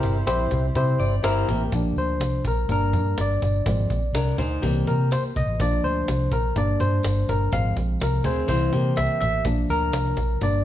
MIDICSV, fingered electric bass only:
0, 0, Header, 1, 2, 480
1, 0, Start_track
1, 0, Tempo, 483481
1, 1712, Time_signature, 4, 2, 24, 8
1, 10566, End_track
2, 0, Start_track
2, 0, Title_t, "Fingered electric bass"
2, 0, Program_c, 0, 33
2, 28, Note_on_c, 0, 31, 78
2, 210, Note_off_c, 0, 31, 0
2, 272, Note_on_c, 0, 34, 93
2, 452, Note_off_c, 0, 34, 0
2, 503, Note_on_c, 0, 36, 91
2, 687, Note_off_c, 0, 36, 0
2, 751, Note_on_c, 0, 48, 98
2, 932, Note_off_c, 0, 48, 0
2, 988, Note_on_c, 0, 31, 95
2, 1170, Note_off_c, 0, 31, 0
2, 1227, Note_on_c, 0, 31, 84
2, 1410, Note_off_c, 0, 31, 0
2, 1474, Note_on_c, 0, 33, 87
2, 1655, Note_off_c, 0, 33, 0
2, 1712, Note_on_c, 0, 34, 92
2, 1893, Note_off_c, 0, 34, 0
2, 1946, Note_on_c, 0, 38, 75
2, 2185, Note_off_c, 0, 38, 0
2, 2185, Note_on_c, 0, 36, 80
2, 2369, Note_off_c, 0, 36, 0
2, 2429, Note_on_c, 0, 34, 88
2, 2611, Note_off_c, 0, 34, 0
2, 2670, Note_on_c, 0, 31, 88
2, 2913, Note_on_c, 0, 43, 95
2, 2928, Note_off_c, 0, 31, 0
2, 3094, Note_off_c, 0, 43, 0
2, 3158, Note_on_c, 0, 31, 95
2, 3338, Note_off_c, 0, 31, 0
2, 3399, Note_on_c, 0, 31, 79
2, 3578, Note_off_c, 0, 31, 0
2, 3633, Note_on_c, 0, 32, 106
2, 3815, Note_off_c, 0, 32, 0
2, 3873, Note_on_c, 0, 34, 80
2, 4054, Note_off_c, 0, 34, 0
2, 4099, Note_on_c, 0, 36, 84
2, 4286, Note_off_c, 0, 36, 0
2, 4353, Note_on_c, 0, 38, 91
2, 4534, Note_off_c, 0, 38, 0
2, 4600, Note_on_c, 0, 36, 108
2, 4779, Note_off_c, 0, 36, 0
2, 4838, Note_on_c, 0, 48, 100
2, 5108, Note_off_c, 0, 48, 0
2, 5322, Note_on_c, 0, 36, 89
2, 5409, Note_off_c, 0, 36, 0
2, 5426, Note_on_c, 0, 33, 77
2, 5520, Note_off_c, 0, 33, 0
2, 5556, Note_on_c, 0, 34, 112
2, 5736, Note_off_c, 0, 34, 0
2, 5795, Note_on_c, 0, 38, 86
2, 5976, Note_off_c, 0, 38, 0
2, 6042, Note_on_c, 0, 36, 84
2, 6220, Note_off_c, 0, 36, 0
2, 6269, Note_on_c, 0, 34, 79
2, 6452, Note_off_c, 0, 34, 0
2, 6512, Note_on_c, 0, 31, 95
2, 6694, Note_off_c, 0, 31, 0
2, 6748, Note_on_c, 0, 43, 104
2, 6931, Note_off_c, 0, 43, 0
2, 6991, Note_on_c, 0, 31, 86
2, 7172, Note_off_c, 0, 31, 0
2, 7237, Note_on_c, 0, 31, 83
2, 7416, Note_off_c, 0, 31, 0
2, 7473, Note_on_c, 0, 32, 120
2, 7653, Note_off_c, 0, 32, 0
2, 7707, Note_on_c, 0, 34, 76
2, 7890, Note_off_c, 0, 34, 0
2, 7956, Note_on_c, 0, 36, 81
2, 8135, Note_off_c, 0, 36, 0
2, 8179, Note_on_c, 0, 38, 95
2, 8364, Note_off_c, 0, 38, 0
2, 8425, Note_on_c, 0, 36, 96
2, 8608, Note_off_c, 0, 36, 0
2, 8661, Note_on_c, 0, 48, 91
2, 8845, Note_off_c, 0, 48, 0
2, 8912, Note_on_c, 0, 36, 87
2, 9002, Note_off_c, 0, 36, 0
2, 9143, Note_on_c, 0, 33, 84
2, 9326, Note_off_c, 0, 33, 0
2, 9379, Note_on_c, 0, 34, 102
2, 9563, Note_off_c, 0, 34, 0
2, 9623, Note_on_c, 0, 38, 81
2, 9857, Note_off_c, 0, 38, 0
2, 9857, Note_on_c, 0, 36, 75
2, 10041, Note_off_c, 0, 36, 0
2, 10091, Note_on_c, 0, 34, 92
2, 10277, Note_off_c, 0, 34, 0
2, 10337, Note_on_c, 0, 31, 97
2, 10566, Note_off_c, 0, 31, 0
2, 10566, End_track
0, 0, End_of_file